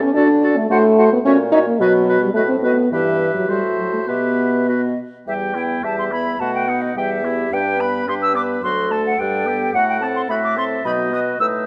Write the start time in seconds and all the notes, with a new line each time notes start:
0.02 C#4
0.14 D3 D4 F#4 A4 D5
0.42 F#4 A4 D5
0.57 A3
0.70 A2 A3 F#4 C5 F#5
0.98 F#4 C5 F#5
1.13 B3
1.25 A#2 C#4 F#4 C#5 E5
1.52 D#4 F#4 C#5 E5
1.67 A#3
1.80 B2 F#3 F#4 B4 D#5
2.08 F#4 B4 D#5
2.22 G3
2.34 A2 A3 F#4 B4 D#5
2.48 C4
2.63 B3 F#4 B4 D#5
2.92 G2 E3 G4 B4 E5
3.35 F#3
3.49 A2 G3 F#4 C5 E5
3.77 F#3
3.93 A3
4.08 B2 B3 G4 B4 E5
4.69 F#4 B4 D#5
5.27 E2 G3 G4 E5 G5
5.55 B3 E4 G5
5.84 E2 G3 G4 E5 A5
5.98 C6
6.11 B3 E4 B5
6.39 B2 A3 F#4 F#5 A5
6.54 G5
6.68 B3 D#4 F#5
6.81 D#5
6.95 E2 G3 G4 E5 G5
7.24 B3 E4 G4
7.51 G2 D4 G4 B4 G5
7.79 B3 B4 B5
8.07 G2 D4 G4 C6
8.22 E6
8.35 B3 B4 D6
8.63 D2 F#3 F#4 A4 C6
8.91 A3 A4 A5
9.06 F#5
9.19 G2 G3 D4 G5
9.46 B3 G4
9.73 A2 A3 F#4 F#5
9.88 G5
10.01 C4 A4 A5
10.16 C6
10.29 A2 A3 F#4 E5 B5
10.43 D6
10.57 C4 A4 C6
10.84 B2 F#3 D#4 D#5 B5
11.11 B3 F#4 D#6
11.39 A2 A3 D#4 B4 E6